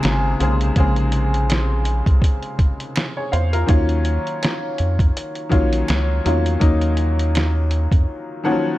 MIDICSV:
0, 0, Header, 1, 4, 480
1, 0, Start_track
1, 0, Tempo, 731707
1, 498, Time_signature, 4, 2, 24, 8
1, 5760, End_track
2, 0, Start_track
2, 0, Title_t, "Upright piano"
2, 0, Program_c, 0, 0
2, 0, Control_c, 0, 64, 127
2, 0, Note_on_c, 0, 48, 78
2, 0, Note_on_c, 0, 49, 101
2, 0, Note_on_c, 0, 56, 84
2, 0, Note_on_c, 0, 58, 80
2, 0, Note_on_c, 0, 60, 89
2, 0, Note_on_c, 0, 68, 101
2, 161, Note_off_c, 0, 56, 0
2, 163, Note_off_c, 0, 58, 0
2, 165, Note_off_c, 0, 60, 0
2, 167, Note_off_c, 0, 68, 0
2, 180, Note_off_c, 0, 49, 0
2, 262, Note_on_c, 0, 49, 86
2, 266, Note_on_c, 0, 56, 69
2, 270, Note_on_c, 0, 58, 69
2, 275, Note_on_c, 0, 60, 66
2, 279, Note_on_c, 0, 68, 84
2, 451, Note_off_c, 0, 49, 0
2, 453, Note_off_c, 0, 56, 0
2, 455, Note_off_c, 0, 58, 0
2, 457, Note_off_c, 0, 60, 0
2, 459, Note_off_c, 0, 68, 0
2, 508, Note_on_c, 0, 49, 91
2, 511, Note_on_c, 0, 56, 85
2, 516, Note_on_c, 0, 58, 78
2, 520, Note_on_c, 0, 60, 72
2, 524, Note_on_c, 0, 68, 89
2, 1243, Note_off_c, 0, 49, 0
2, 1244, Note_off_c, 0, 56, 0
2, 1247, Note_off_c, 0, 58, 0
2, 1249, Note_off_c, 0, 60, 0
2, 1251, Note_off_c, 0, 68, 0
2, 2078, Note_on_c, 0, 73, 64
2, 2082, Note_on_c, 0, 68, 51
2, 2176, Note_off_c, 0, 73, 0
2, 2178, Note_off_c, 0, 68, 0
2, 2178, Note_on_c, 0, 77, 69
2, 2182, Note_on_c, 0, 72, 63
2, 2305, Note_off_c, 0, 77, 0
2, 2307, Note_off_c, 0, 72, 0
2, 2315, Note_on_c, 0, 70, 75
2, 2319, Note_on_c, 0, 65, 56
2, 2405, Note_on_c, 0, 51, 87
2, 2409, Note_on_c, 0, 54, 72
2, 2412, Note_off_c, 0, 65, 0
2, 2412, Note_on_c, 0, 58, 80
2, 2416, Note_on_c, 0, 61, 89
2, 2421, Note_on_c, 0, 65, 96
2, 2426, Control_c, 0, 64, 0
2, 2429, Note_off_c, 0, 48, 0
2, 2541, Note_off_c, 0, 70, 0
2, 2553, Control_c, 0, 64, 127
2, 3151, Note_off_c, 0, 51, 0
2, 3153, Note_off_c, 0, 54, 0
2, 3155, Note_off_c, 0, 58, 0
2, 3157, Note_off_c, 0, 61, 0
2, 3159, Note_off_c, 0, 65, 0
2, 3604, Note_on_c, 0, 51, 92
2, 3608, Note_on_c, 0, 54, 86
2, 3612, Note_on_c, 0, 58, 78
2, 3617, Note_on_c, 0, 61, 89
2, 3620, Note_on_c, 0, 65, 95
2, 3993, Note_off_c, 0, 51, 0
2, 3995, Note_off_c, 0, 54, 0
2, 3997, Note_off_c, 0, 58, 0
2, 3999, Note_off_c, 0, 61, 0
2, 4001, Note_off_c, 0, 65, 0
2, 4096, Note_on_c, 0, 51, 81
2, 4102, Note_on_c, 0, 54, 74
2, 4106, Note_on_c, 0, 58, 73
2, 4109, Note_on_c, 0, 61, 77
2, 4113, Note_on_c, 0, 65, 87
2, 4288, Note_off_c, 0, 51, 0
2, 4291, Note_off_c, 0, 54, 0
2, 4293, Note_off_c, 0, 58, 0
2, 4294, Note_off_c, 0, 61, 0
2, 4296, Note_off_c, 0, 65, 0
2, 4326, Note_on_c, 0, 51, 86
2, 4330, Note_on_c, 0, 54, 79
2, 4335, Note_on_c, 0, 58, 91
2, 4339, Note_on_c, 0, 61, 71
2, 4343, Note_on_c, 0, 63, 86
2, 5072, Note_off_c, 0, 51, 0
2, 5074, Note_off_c, 0, 54, 0
2, 5076, Note_off_c, 0, 58, 0
2, 5078, Note_off_c, 0, 61, 0
2, 5080, Note_off_c, 0, 63, 0
2, 5534, Note_on_c, 0, 51, 89
2, 5537, Note_on_c, 0, 53, 67
2, 5541, Note_on_c, 0, 78, 84
2, 5542, Note_on_c, 0, 58, 78
2, 5546, Note_on_c, 0, 61, 88
2, 5547, Note_off_c, 0, 53, 0
2, 5551, Note_on_c, 0, 53, 90
2, 5581, Note_on_c, 0, 54, 89
2, 5760, Note_off_c, 0, 51, 0
2, 5760, Note_off_c, 0, 53, 0
2, 5760, Note_off_c, 0, 54, 0
2, 5760, Note_off_c, 0, 58, 0
2, 5760, Note_off_c, 0, 61, 0
2, 5760, Note_off_c, 0, 78, 0
2, 5760, End_track
3, 0, Start_track
3, 0, Title_t, "Analog synth bass"
3, 0, Program_c, 1, 38
3, 27, Note_on_c, 1, 32, 92
3, 231, Note_off_c, 1, 32, 0
3, 265, Note_on_c, 1, 35, 104
3, 470, Note_off_c, 1, 35, 0
3, 503, Note_on_c, 1, 34, 95
3, 1328, Note_off_c, 1, 34, 0
3, 1358, Note_on_c, 1, 36, 92
3, 1447, Note_off_c, 1, 36, 0
3, 2185, Note_on_c, 1, 40, 103
3, 2390, Note_off_c, 1, 40, 0
3, 2423, Note_on_c, 1, 39, 104
3, 2745, Note_off_c, 1, 39, 0
3, 3147, Note_on_c, 1, 41, 104
3, 3352, Note_off_c, 1, 41, 0
3, 3623, Note_on_c, 1, 34, 85
3, 3829, Note_off_c, 1, 34, 0
3, 3867, Note_on_c, 1, 37, 104
3, 4071, Note_off_c, 1, 37, 0
3, 4106, Note_on_c, 1, 40, 100
3, 4310, Note_off_c, 1, 40, 0
3, 4342, Note_on_c, 1, 39, 113
3, 5168, Note_off_c, 1, 39, 0
3, 5197, Note_on_c, 1, 41, 89
3, 5287, Note_off_c, 1, 41, 0
3, 5760, End_track
4, 0, Start_track
4, 0, Title_t, "Drums"
4, 19, Note_on_c, 9, 26, 75
4, 23, Note_on_c, 9, 42, 70
4, 33, Note_on_c, 9, 38, 99
4, 85, Note_off_c, 9, 26, 0
4, 89, Note_off_c, 9, 42, 0
4, 98, Note_off_c, 9, 38, 0
4, 265, Note_on_c, 9, 42, 64
4, 331, Note_off_c, 9, 42, 0
4, 399, Note_on_c, 9, 42, 42
4, 465, Note_off_c, 9, 42, 0
4, 498, Note_on_c, 9, 42, 77
4, 499, Note_on_c, 9, 36, 98
4, 563, Note_off_c, 9, 42, 0
4, 565, Note_off_c, 9, 36, 0
4, 632, Note_on_c, 9, 42, 30
4, 697, Note_off_c, 9, 42, 0
4, 735, Note_on_c, 9, 42, 60
4, 800, Note_off_c, 9, 42, 0
4, 880, Note_on_c, 9, 42, 36
4, 945, Note_off_c, 9, 42, 0
4, 982, Note_on_c, 9, 26, 65
4, 983, Note_on_c, 9, 42, 91
4, 995, Note_on_c, 9, 38, 98
4, 1048, Note_off_c, 9, 26, 0
4, 1049, Note_off_c, 9, 42, 0
4, 1061, Note_off_c, 9, 38, 0
4, 1215, Note_on_c, 9, 42, 58
4, 1281, Note_off_c, 9, 42, 0
4, 1353, Note_on_c, 9, 36, 92
4, 1359, Note_on_c, 9, 42, 41
4, 1419, Note_off_c, 9, 36, 0
4, 1425, Note_off_c, 9, 42, 0
4, 1454, Note_on_c, 9, 36, 93
4, 1469, Note_on_c, 9, 42, 83
4, 1520, Note_off_c, 9, 36, 0
4, 1534, Note_off_c, 9, 42, 0
4, 1591, Note_on_c, 9, 42, 31
4, 1656, Note_off_c, 9, 42, 0
4, 1698, Note_on_c, 9, 36, 79
4, 1698, Note_on_c, 9, 42, 53
4, 1764, Note_off_c, 9, 36, 0
4, 1764, Note_off_c, 9, 42, 0
4, 1837, Note_on_c, 9, 42, 49
4, 1903, Note_off_c, 9, 42, 0
4, 1940, Note_on_c, 9, 26, 82
4, 1941, Note_on_c, 9, 42, 70
4, 1950, Note_on_c, 9, 38, 98
4, 2005, Note_off_c, 9, 26, 0
4, 2007, Note_off_c, 9, 42, 0
4, 2016, Note_off_c, 9, 38, 0
4, 2186, Note_on_c, 9, 42, 56
4, 2251, Note_off_c, 9, 42, 0
4, 2317, Note_on_c, 9, 42, 47
4, 2383, Note_off_c, 9, 42, 0
4, 2418, Note_on_c, 9, 42, 77
4, 2420, Note_on_c, 9, 36, 108
4, 2483, Note_off_c, 9, 42, 0
4, 2485, Note_off_c, 9, 36, 0
4, 2551, Note_on_c, 9, 42, 33
4, 2617, Note_off_c, 9, 42, 0
4, 2655, Note_on_c, 9, 42, 52
4, 2721, Note_off_c, 9, 42, 0
4, 2800, Note_on_c, 9, 42, 35
4, 2865, Note_off_c, 9, 42, 0
4, 2904, Note_on_c, 9, 26, 75
4, 2904, Note_on_c, 9, 42, 87
4, 2916, Note_on_c, 9, 38, 104
4, 2969, Note_off_c, 9, 42, 0
4, 2970, Note_off_c, 9, 26, 0
4, 2982, Note_off_c, 9, 38, 0
4, 3138, Note_on_c, 9, 42, 57
4, 3203, Note_off_c, 9, 42, 0
4, 3274, Note_on_c, 9, 36, 94
4, 3280, Note_on_c, 9, 42, 43
4, 3340, Note_off_c, 9, 36, 0
4, 3346, Note_off_c, 9, 42, 0
4, 3390, Note_on_c, 9, 42, 88
4, 3456, Note_off_c, 9, 42, 0
4, 3512, Note_on_c, 9, 42, 30
4, 3578, Note_off_c, 9, 42, 0
4, 3619, Note_on_c, 9, 36, 85
4, 3619, Note_on_c, 9, 42, 54
4, 3684, Note_off_c, 9, 36, 0
4, 3684, Note_off_c, 9, 42, 0
4, 3757, Note_on_c, 9, 42, 53
4, 3822, Note_off_c, 9, 42, 0
4, 3860, Note_on_c, 9, 26, 85
4, 3862, Note_on_c, 9, 42, 65
4, 3871, Note_on_c, 9, 38, 104
4, 3925, Note_off_c, 9, 26, 0
4, 3927, Note_off_c, 9, 42, 0
4, 3937, Note_off_c, 9, 38, 0
4, 4105, Note_on_c, 9, 42, 66
4, 4171, Note_off_c, 9, 42, 0
4, 4237, Note_on_c, 9, 42, 47
4, 4303, Note_off_c, 9, 42, 0
4, 4338, Note_on_c, 9, 42, 73
4, 4339, Note_on_c, 9, 36, 87
4, 4403, Note_off_c, 9, 42, 0
4, 4405, Note_off_c, 9, 36, 0
4, 4470, Note_on_c, 9, 42, 34
4, 4536, Note_off_c, 9, 42, 0
4, 4572, Note_on_c, 9, 42, 59
4, 4638, Note_off_c, 9, 42, 0
4, 4719, Note_on_c, 9, 42, 42
4, 4785, Note_off_c, 9, 42, 0
4, 4822, Note_on_c, 9, 26, 72
4, 4823, Note_on_c, 9, 42, 77
4, 4835, Note_on_c, 9, 38, 97
4, 4888, Note_off_c, 9, 26, 0
4, 4888, Note_off_c, 9, 42, 0
4, 4900, Note_off_c, 9, 38, 0
4, 5057, Note_on_c, 9, 42, 52
4, 5122, Note_off_c, 9, 42, 0
4, 5193, Note_on_c, 9, 36, 92
4, 5198, Note_on_c, 9, 42, 43
4, 5258, Note_off_c, 9, 36, 0
4, 5263, Note_off_c, 9, 42, 0
4, 5760, End_track
0, 0, End_of_file